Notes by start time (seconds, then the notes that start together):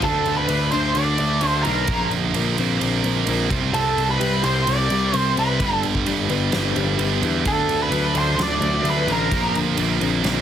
0.02 D2 D3 A3 D4 A4, kick, crash
0.26 D3, ride
0.37 B4
0.49 D2 D3 A3 D4, ride
0.72 D2 D3 A3 D4 C5, ride
0.94 D2 D3 A3 D4 D5, ride
1.18 D2 A3, ride
1.41 D2 D3 A3 D4, ride
1.48 C5
1.63 B1 D3 A#4, ride
1.67 A3 D4
1.87 A#1 A#2 F3 A#3, kick, ride
2.11 D3, ride
2.34 A#1 A#2 F3 A#3, ride
2.58 A#1 A#2 F3 A#3 C4, ride
2.81 A#1 A#2 D3 F3 A#3, ride
3.04 A#1 A#3, ride
3.26 A#1 A#2 F3 A#3 C4, ride
3.50 C2 C3 G3 C4, kick, ride
3.73 C2 C3 G3 C4 A4, ride
3.97 C3, ride
4.10 B4
4.20 C2 C3 G3 C4, ride
4.43 C2 C3 G3 C4 C5, ride
4.66 C2 C3 G3 C4 D5, ride
4.90 C2 G3, ride
5.13 C2 C3 G3 C4 C5, ride
5.36 C2 C3 G3 C4 B4, ride
5.60 G1 G2 D3 G3, kick, ride
5.83 D3, ride
5.95 kick
6.06 G1 G2 D3 G3, ride
6.28 G1 G2 D3 G3 B3, ride
6.51 G1 G2 D3 G3, snare, ride
6.76 G1 G3, ride
6.98 G1 G2 D3 G3 B3, ride
7.21 E2 G2 D3 G3, ride
7.45 D2 D3 A3 D4 A4, kick, ride
7.69 D3, ride
7.82 B4
7.90 D2 D3 F#3 A3 D4, ride
8.15 D2 D3 A3 D4 C5, ride
8.37 D2 D3 A3 D4, snare, ride
8.42 D5
8.61 D2 F#3, ride
8.83 D2 D3 A3 D4, ride
8.90 B4
9.07 A1 D3 A3 D4, ride
9.12 A#4
9.31 A#1 A#2 F3 A#3, kick, ride
9.55 D3, ride
9.77 A#1 A#2 F3 A#3, ride
10.01 A#1 A#2 F3 A#3 C4, ride
10.24 A#1 A#2 D3 F3 A#3, snare, ride